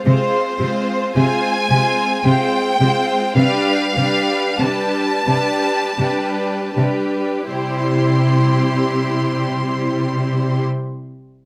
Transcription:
0.04 C3 G#3 C4 F4 C5
0.58 C3 G#3 C4 F4 C5
1.15 C3 G#3 C4 F4 C5 G#5
1.70 C3 G#3 C4 F4 C5
2.24 C3 G#3 C4 F4 C5 G5
2.79 C3 G#3 C4 F4 C5
3.36 C3 G3 D4 G4 B4 F5
3.96 C3 G3 D4 G4 B4
4.59 C3 G3 D4 G4 B4 A5
5.26 C3 G3 D4 G4 B4
5.97 C3 G3 D4 G4 B4
6.75 C3 G3 D4 G4 B4
7.48 C3 G3 E4 C6
7.52 G4 C5

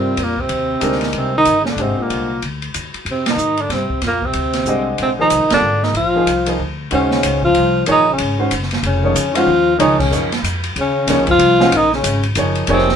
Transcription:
Already playing: G2 C3 G3 C4 F4 A#4 D5
0.17 F2 A#2, ride
0.24 A#3
0.37 C3 C4, kick
0.49 D#2, ride
0.80 D2 G#3 D4 D#4 G4 A#4, hi-hat pedal, ride
0.92 snare
1.01 snare, ride
1.13 C2 C3, ride
1.18 C4
1.37 D#3 D#4
1.45 G1, hi-hat pedal, ride
1.61 C#3
1.65 D3 C#4, snare
1.70 D4
1.77 G#1 C3 D3 G#3 G4 C5 D#5, ride
1.82 C4
1.98 A#2, muted upright bass stroke
2.02 A#3
2.10 C2, ride
2.42 D2, ride
2.62 ride
2.74 D#2, hi-hat pedal, ride
2.94 muted upright bass stroke, ride
3.05 F2 C3, ride
3.11 C4
3.26 D#3, snare, ride
3.30 D#4
3.37 G#2, hi-hat pedal
3.57 D3 D4, ride
3.69 G2 C3 C4, snare, ride
3.90 muted upright bass stroke, kick
4.02 F2 A#2, snare, ride
4.07 A#3
4.22 C3 C4, kick
4.33 D2, ride
4.53 snare, ride
4.66 C2 D3 G#3 G4 C5 D#5, hi-hat pedal
4.98 A#1 C3 C4, ride
5.19 D#3 F3 A#3 D#4 G#4 C5
5.30 C2, hi-hat pedal, ride
5.41 A#1
5.50 F1 D3 G3 C4 D4 F4 A#4 D5, snare, ride
5.62 G#1
5.83 D#3 D#4, snare
5.94 A#1 F3 F4, ride
6.15 F3 A#3 D#4 G#4 C5
6.26 C2, hi-hat pedal, ride
6.46 F3 A#3 D#4 G#4 C5, ride
6.59 D2
6.91 D#2 C#3 D#3 G#3 C#4 F#4 C5, ride
7.11 snare
7.23 C#2, hi-hat pedal, ride
7.43 F3 F4, kick
7.55 C2, ride
7.86 A#1 D#3 F3 A#3 D#4 G#4 C#5, ride
7.91 D#4
8.08 C#3
8.13 C#4
8.18 G#1, ride
8.38 D#3 G#3 C#4 F#4 C5
8.51 F#1, hi-hat pedal, ride
8.63 snare
8.71 snare, ride
8.83 F1 C#3 C#4, ride
9.04 F3 A#3 D#4 G#4 C#5
9.14 F2, hi-hat pedal, ride
9.34 D#3 F3 G#3 C#4 F4 F#4 C5, ride
9.46 D#2
9.77 C#2 D#3 F3 A#3 D#4 G#4 C#5, ride
9.98 C#3 C#4, kick, crash
10.11 F#2 F3 A#3 D#4 G#4 C#5, hi-hat pedal
10.32 snare, ride
10.43 F2, hi-hat pedal, ride
10.64 ride
10.76 D#2 C#3, ride
10.81 C#4
11.07 C#2 F3 A#3 D#4 G#4 C#5, snare, hi-hat pedal, ride
11.18 A#1
11.27 F#1 F3, kick, ride
11.31 F4
11.39 C2, ride
11.60 G#3 C#4 F#4 C5 F5, snare
11.72 A#1 D#3, ride
11.76 D#4
11.93 C#3 C#4, snare
12.03 G#1, hi-hat pedal, ride
12.23 ride
12.35 F#1 F3 A#3 D#4 G#4 C#5, hi-hat pedal, ride
12.55 ride
12.67 F1 F3 A#3 D#4 G#4 C#5, ride
12.72 C3 C4
12.78 snare
12.89 snare

